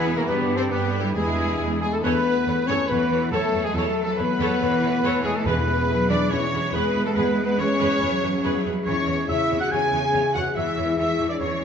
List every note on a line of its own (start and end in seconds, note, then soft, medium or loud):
0.00 0.23 E2 medium
0.00 0.29 E2 medium
0.00 0.16 B2 medium
0.00 0.16 B3 medium
0.00 0.17 B3 medium
0.00 0.28 E4 medium
0.00 0.29 E4 medium
0.00 0.17 G#4 medium
0.00 0.27 G#4 medium
0.00 0.30 G#4 medium
0.00 0.17 B4 medium
0.00 0.19 B4 medium
0.00 0.70 B4 medium
0.00 0.30 E5 medium
0.00 1.03 B5 medium
0.06 0.30 G#3 medium
0.06 0.28 B3 medium
0.17 0.30 B2 medium
0.17 0.28 A#3 medium
0.17 0.27 F#4 medium
0.17 0.28 A#4 medium
0.17 0.27 A#4 medium
0.26 0.66 G2 medium
0.26 1.17 G2 medium
0.26 0.56 B3 medium
0.26 0.71 D4 medium
0.26 0.56 G4 medium
0.26 0.71 G4 medium
0.26 0.34 B4 medium
0.26 0.40 B4 medium
0.26 0.58 B4 medium
0.39 1.17 D3 medium
0.50 1.17 G3 medium
0.56 0.71 C4 medium
0.56 0.64 C4 medium
0.56 0.71 A4 medium
0.56 0.63 C5 medium
0.56 0.73 C5 medium
0.56 0.63 C5 medium
0.60 1.48 D4 medium
0.70 1.10 G2 medium
0.70 1.00 B3 medium
0.70 0.79 B3 medium
0.70 1.13 D4 medium
0.70 1.15 D4 medium
0.70 0.99 G4 medium
0.70 0.93 G4 medium
0.70 0.99 B4 medium
0.70 1.01 B4 medium
0.70 1.00 B4 medium
0.70 1.58 B4 medium
0.82 1.17 G4 medium
0.93 1.15 A4 medium
0.93 1.81 D5 medium
0.99 1.15 G3 medium
0.99 1.06 G3 medium
0.99 1.13 E4 medium
0.99 1.15 G4 medium
0.99 1.16 G4 medium
0.99 1.15 G4 medium
1.04 1.92 B5 medium
1.14 1.53 E2 medium
1.14 2.03 E2 medium
1.14 1.80 G#3 medium
1.14 1.65 D4 medium
1.14 1.79 E4 medium
1.14 1.80 E4 medium
1.14 1.79 G#4 medium
1.14 1.80 G#4 medium
1.14 1.65 B4 medium
1.28 2.05 B2 medium
1.38 5.28 B3 medium
1.49 1.69 D4 soft
1.59 1.98 E2 medium
1.59 2.24 B4 medium
1.71 2.05 D4 medium
1.81 1.92 G#3 medium
1.81 1.91 G#4 medium
1.81 1.86 G#4 medium
1.81 1.91 G#4 medium
1.81 1.92 G#4 medium
1.81 2.05 D5 medium
1.81 1.86 G#5 medium
1.92 2.04 A3 medium
1.92 2.03 A4 medium
1.92 2.02 A4 medium
1.92 1.97 A4 medium
1.92 2.03 A4 medium
1.92 2.03 A5 medium
1.92 2.57 B5 medium
2.03 2.12 E2 medium
2.03 3.73 E2 medium
2.03 2.68 B3 loud
2.03 2.24 A4 medium
2.03 2.68 B4 medium
2.03 2.66 B4 medium
2.03 2.24 C#5 medium
2.03 2.44 B5 medium
2.14 2.98 A3 medium
2.25 2.77 B4 medium
2.36 2.67 A4 medium
2.46 2.54 E2 medium
2.46 2.56 A4 medium
2.46 3.30 C#5 medium
2.46 2.56 C#5 medium
2.58 3.42 B5 medium
2.67 2.76 E2 medium
2.67 2.89 C#4 loud
2.67 3.20 A4 medium
2.67 2.88 A4 medium
2.67 2.91 C#5 medium
2.67 2.75 C#5 medium
2.67 2.78 C#5 medium
2.67 2.90 C#5 medium
2.67 2.88 C#5 medium
2.67 2.89 C#6 medium
2.78 3.09 B4 medium
2.87 2.98 E2 medium
2.87 4.59 B2 medium
2.87 3.29 E3 medium
2.87 3.31 B3 medium
2.87 2.99 A4 medium
2.87 3.31 B4 medium
2.87 3.32 B4 medium
2.87 3.31 B4 medium
2.87 2.99 C#5 medium
2.87 3.33 B5 medium
2.99 3.84 A3 medium
3.10 3.18 E2 medium
3.10 3.20 A4 medium
3.10 3.63 B4 medium
3.10 3.20 C#5 medium
3.21 3.52 A4 medium
3.31 3.40 E2 medium
3.31 4.60 F#3 medium
3.31 3.65 A3 medium
3.31 3.66 A4 medium
3.31 3.63 A4 medium
3.31 3.66 A4 medium
3.31 3.64 A4 medium
3.31 3.52 A4 medium
3.31 4.17 C#5 medium
3.31 3.52 C#5 medium
3.31 3.66 A5 medium
3.43 4.27 B5 medium
3.53 3.62 E2 medium
3.53 4.05 A4 medium
3.53 3.63 A4 medium
3.53 3.62 C#5 medium
3.63 3.75 G#3 medium
3.63 3.74 G#4 medium
3.63 3.76 G#4 medium
3.63 3.75 G#4 medium
3.63 3.77 G#4 medium
3.63 3.94 B4 medium
3.63 3.74 G#5 medium
3.74 3.82 E2 medium
3.74 5.44 E2 medium
3.74 4.03 A3 medium
3.74 4.02 A4 medium
3.74 4.01 A4 medium
3.74 4.03 A4 medium
3.74 3.96 A4 medium
3.74 3.96 C#5 medium
3.74 4.03 A5 medium
3.85 4.70 A3 medium
3.96 4.48 B4 medium
4.02 4.11 A3 medium
4.02 4.08 A4 medium
4.02 4.17 A4 medium
4.02 4.19 A4 medium
4.02 4.10 A4 medium
4.02 4.09 A5 medium
4.07 4.37 A4 soft
4.16 4.26 E2 medium
4.16 5.23 B3 loud
4.16 4.26 A4 medium
4.16 5.21 B4 medium
4.16 5.24 B4 loud
4.16 5.26 B4 medium
4.16 5.27 B4 medium
4.16 5.01 C#5 medium
4.16 4.27 C#5 medium
4.16 5.27 B5 medium
4.28 5.12 B5 medium
4.38 4.47 E2 medium
4.38 4.91 A4 medium
4.38 4.59 A4 medium
4.38 4.59 C#5 medium
4.60 4.68 E2 medium
4.60 5.47 B2 medium
4.60 5.02 E3 medium
4.60 4.70 A4 medium
4.60 4.70 C#5 medium
4.71 5.47 A3 medium
4.82 4.90 E2 medium
4.82 4.90 A4 medium
4.82 4.91 C#5 medium
4.93 5.23 A4 soft
5.03 5.11 E2 medium
5.03 5.87 E3 medium
5.03 5.23 A4 medium
5.03 5.47 C#5 medium
5.03 5.23 C#5 medium
5.14 5.97 B5 medium
5.23 5.32 E2 medium
5.23 5.35 G#3 medium
5.23 5.34 G#4 medium
5.23 5.35 G#4 medium
5.23 5.37 G#4 medium
5.23 5.47 A4 medium
5.23 5.34 A4 medium
5.23 5.34 C#5 medium
5.23 5.38 G#5 medium
5.35 5.46 A3 medium
5.35 5.45 A4 medium
5.35 5.46 A4 medium
5.35 5.65 B4 medium
5.35 5.46 A5 medium
5.45 5.53 E2 medium
5.45 7.16 E2 medium
5.45 6.06 E2 medium
5.45 6.10 B3 medium
5.45 5.66 G#4 medium
5.45 6.09 B4 medium
5.45 6.10 B4 medium
5.45 6.09 B4 medium
5.45 5.66 B4 medium
5.45 6.09 B5 medium
5.56 6.40 G#3 medium
5.67 6.19 B4 medium
5.77 6.08 G#4 medium
5.87 5.96 E2 medium
5.87 6.30 F#3 medium
5.87 5.97 G#4 medium
5.87 5.97 B4 medium
5.87 6.73 E5 medium
5.98 6.85 B5 medium
6.09 6.17 E2 medium
6.09 6.31 D4 medium
6.09 6.62 G#4 medium
6.09 6.30 G#4 medium
6.09 6.30 B4 medium
6.09 6.31 D5 medium
6.09 6.32 D5 medium
6.09 6.33 D5 medium
6.09 6.33 D6 medium
6.20 6.52 B4 medium
6.30 6.39 E2 medium
6.30 8.00 B2 medium
6.30 6.73 E3 medium
6.30 6.74 C#4 medium
6.30 6.39 G#4 medium
6.30 6.39 B4 medium
6.30 6.73 C#5 medium
6.30 6.74 C#5 medium
6.30 6.73 C#5 medium
6.30 6.75 C#6 medium
6.42 7.27 G#3 medium
6.52 6.60 E2 medium
6.52 6.62 G#4 medium
6.52 7.05 B4 medium
6.52 6.62 B4 medium
6.64 6.95 G#4 medium
6.72 6.81 E2 medium
6.72 7.98 G#3 medium
6.72 7.05 B3 medium
6.72 6.93 G#4 medium
6.72 7.05 B4 medium
6.72 6.93 B4 medium
6.72 7.05 B4 medium
6.72 7.06 B4 medium
6.72 7.58 E5 medium
6.72 7.05 B5 medium
6.86 7.69 B5 medium
6.94 7.02 E2 medium
6.94 7.03 G#4 medium
6.94 7.48 G#4 medium
6.94 7.04 B4 medium
7.05 7.17 A3 medium
7.05 7.16 A4 medium
7.05 7.17 A4 medium
7.05 7.12 A4 medium
7.05 7.37 B4 medium
7.05 7.11 A5 medium
7.14 7.24 E2 medium
7.14 8.86 E2 medium
7.14 7.44 B3 medium
7.14 7.36 G#4 medium
7.14 7.42 B4 medium
7.14 7.44 B4 medium
7.14 7.36 B4 medium
7.14 7.45 B4 medium
7.14 7.23 B5 medium
7.28 8.11 G#3 medium
7.38 7.90 B4 medium
7.44 7.52 B3 medium
7.44 7.58 B4 medium
7.44 7.59 B4 medium
7.44 7.62 B4 medium
7.44 7.61 B5 medium
7.49 7.79 G#4 medium
7.58 7.66 E2 medium
7.58 8.63 C#4 loud
7.58 7.67 G#4 medium
7.58 7.67 B4 medium
7.58 8.62 C#5 medium
7.58 8.65 C#5 medium
7.58 8.66 C#5 medium
7.58 8.43 E5 medium
7.58 8.65 C#6 medium
7.70 8.54 B5 medium
7.79 7.88 E2 medium
7.79 7.99 G#4 medium
7.79 7.99 B4 medium
7.91 8.22 B4 medium
8.00 8.08 E2 medium
8.00 8.88 B2 medium
8.00 8.84 F#3 medium
8.00 8.10 G#4 medium
8.00 8.10 B4 medium
8.12 8.97 G#3 medium
8.22 8.30 E2 medium
8.22 8.31 G#4 medium
8.22 8.31 B4 medium
8.22 8.75 B4 medium
8.34 8.65 G#4 medium
8.43 8.51 E2 medium
8.43 8.63 G#4 medium
8.43 8.63 B4 medium
8.43 9.29 E5 medium
8.56 8.88 B5 medium
8.65 8.73 E2 medium
8.65 9.18 G#4 medium
8.65 8.74 G#4 medium
8.65 8.74 B4 medium
8.77 8.88 B4 medium
8.86 8.95 E2 medium
8.86 9.70 E2 medium
8.86 9.28 E3 medium
8.86 9.25 C#4 medium
8.86 8.94 G#4 medium
8.86 9.25 C#5 medium
8.86 8.94 C#5 medium
8.86 9.26 C#6 medium
8.98 9.80 G#3 medium
9.07 9.15 E2 medium
9.07 9.16 G#4 medium
9.07 9.15 C#5 medium
9.19 9.49 G#4 medium
9.28 9.37 E2 medium
9.28 10.53 C#3 medium
9.28 9.59 E4 loud
9.28 9.37 G#4 medium
9.28 9.37 C#5 medium
9.28 9.59 E5 medium
9.28 9.60 E5 medium
9.28 10.12 E5 medium
9.28 9.60 E6 medium
9.40 10.22 C#6 medium
9.49 9.58 E2 medium
9.49 9.57 G#4 medium
9.49 10.02 G#4 medium
9.49 9.58 C#5 medium
9.60 9.71 F#4 medium
9.60 9.91 C#5 soft
9.60 9.73 F#5 medium
9.60 9.71 F#5 medium
9.60 9.65 F#5 medium
9.60 9.71 F#5 medium
9.60 9.73 F#6 medium
9.70 9.79 E2 medium
9.70 10.55 E2 medium
9.70 10.34 G#4 medium
9.70 9.80 G#4 medium
9.70 9.80 C#5 medium
9.70 10.33 G#5 medium
9.70 10.34 G#5 medium
9.70 10.33 G#6 medium
9.92 10.00 E2 medium
9.92 10.02 G#4 medium
9.92 10.45 C#5 medium
9.92 10.01 C#5 medium
10.03 10.34 G#4 soft
10.13 10.21 E2 medium
10.13 10.22 G#4 medium
10.13 10.22 C#5 medium
10.13 10.97 E5 soft
10.23 11.07 C#6 soft
10.34 10.43 E2 medium
10.34 10.44 F#4 medium
10.34 10.86 G#4 soft
10.34 10.44 G#4 medium
10.34 10.44 C#5 medium
10.34 10.57 F#5 medium
10.34 10.42 F#5 medium
10.34 10.55 F#5 medium
10.34 10.44 F#5 medium
10.34 10.55 F#6 medium
10.46 10.75 C#5 medium
10.55 10.63 E2 medium
10.55 11.38 E2 medium
10.55 11.38 E3 medium
10.55 10.96 E4 medium
10.55 10.64 G#4 medium
10.55 10.64 C#5 medium
10.55 10.97 E5 medium
10.55 10.96 E5 medium
10.55 10.97 E5 medium
10.55 10.97 E6 medium
10.66 11.49 G#3 soft
10.76 10.85 E2 medium
10.76 10.86 G#4 soft
10.76 11.27 C#5 medium
10.76 10.86 C#5 soft
10.87 11.17 G#4 soft
10.97 11.05 E2 medium
10.97 11.29 E4 medium
10.97 11.07 G#4 medium
10.97 11.08 C#5 medium
10.97 11.64 E5 soft
10.97 11.29 E5 medium
10.97 11.31 E6 medium
11.08 11.64 C#6 soft
11.18 11.27 E2 medium
11.18 11.64 G#4 soft
11.18 11.28 G#4 soft
11.18 11.28 C#5 soft
11.29 11.40 D4 medium
11.29 11.60 C#5 soft
11.29 11.40 D5 medium
11.29 11.35 D5 medium
11.29 11.39 D5 medium
11.29 11.41 D5 medium
11.29 11.42 D6 medium
11.39 11.64 E2 medium
11.39 11.48 E2 medium
11.39 11.64 E3 medium
11.39 11.64 C#4 medium
11.39 11.49 G#4 soft
11.39 11.64 C#5 medium
11.39 11.49 C#5 medium
11.39 11.64 C#6 medium
11.50 11.64 G#3 soft
11.61 11.64 C#5 soft